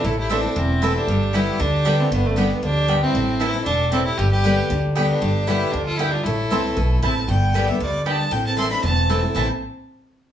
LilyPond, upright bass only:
\new Staff \with { instrumentName = "Upright bass" } { \clef bass \time 4/4 \key a \minor \tempo 4 = 232 a,,2 e,,2 | g,,2 d,2 | g,,2 d,2 | a,,2 e,,2 |
g,,2 d,2 | g,,2 d,2 | a,,4 c,4 b,,4 a,,4 | g,,2 d,2 |
a,,2 e,,2 | a,,8 r2. r8 | }